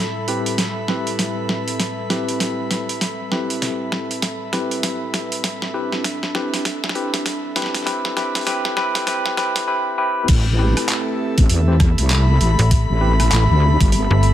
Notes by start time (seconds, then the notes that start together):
Already playing: A2 G3 C4 E4 A4 E5 B5
0.28 C4 E4 G4 B4, closed hi-hat
0.46 closed hi-hat
0.58 B4, snare, closed hi-hat
0.88 C4 E4 G4 B4, snare
1.07 closed hi-hat
1.19 snare, closed hi-hat
1.49 snare
1.68 closed hi-hat
1.80 snare, closed hi-hat
2.10 C4 E4 G4 B4, snare, closed hi-hat
2.29 closed hi-hat
2.40 snare, closed hi-hat
2.71 snare, closed hi-hat
2.89 closed hi-hat
3.01 snare, closed hi-hat
3.31 C4 E4 G4 B4, snare
3.50 closed hi-hat
3.62 snare, closed hi-hat
3.92 snare
4.11 closed hi-hat
4.22 snare, closed hi-hat
4.53 C4 E4 G4 B4, snare, closed hi-hat
4.71 closed hi-hat
4.83 snare, closed hi-hat
5.14 snare, closed hi-hat
5.32 closed hi-hat
5.44 D4, snare, closed hi-hat
5.62 snare
5.74 C4 E4 G4 B4
5.92 snare
6.04 snare, closed hi-hat
6.23 snare
6.35 C4 E4 G4 B4, snare
6.54 snare, closed hi-hat
6.65 snare, closed hi-hat
6.84 snare
6.89 snare
6.95 C4 E4 G4 B4, closed hi-hat
7.14 snare, closed hi-hat
7.26 snare, closed hi-hat
7.56 C4 E4 G4 B4, snare, closed hi-hat
7.62 snare
7.66 snare
7.74 snare, closed hi-hat
7.76 snare
7.83 C4 E4 G4 B4, snare
7.87 snare, closed hi-hat
8.05 snare
8.17 C4 E4 G4 B4, snare, closed hi-hat
8.35 snare, closed hi-hat
8.37 closed hi-hat
8.41 closed hi-hat
8.43 closed hi-hat
8.45 G4 B4, snare, closed hi-hat
8.47 C4 E4, closed hi-hat
8.65 snare
8.77 C4 E4 G4 B4, snare
8.95 snare, closed hi-hat
9.07 C4 E4 G4 B4, snare, closed hi-hat
9.26 snare
9.37 C4 E4 G4 B4, snare, closed hi-hat
9.56 snare, closed hi-hat
9.67 C4 E4 G4 B4
9.98 C4 E4 G4 B4
10.28 A1 A3 C4 G4 A4, kick, closed hi-hat, crash
10.58 C4 E4 G4 B4
10.67 E5
10.77 cross-stick, closed hi-hat
10.89 clap, closed hi-hat
11.38 A1, kick, closed hi-hat
11.45 B5
11.49 E2, closed hi-hat
11.68 C4 E4 G4 C5
11.80 kick, cross-stick, closed hi-hat
11.98 C2, closed hi-hat
12.10 clap, closed hi-hat
12.41 A1, closed hi-hat
12.59 A1, closed hi-hat
12.71 kick, closed hi-hat
12.90 A1
13.01 C4 E4 G4 B4
13.20 cross-stick, closed hi-hat
13.32 A1, clap, closed hi-hat
13.50 D2
13.80 G1, kick, closed hi-hat
13.92 closed hi-hat
14.11 G1
14.23 closed hi-hat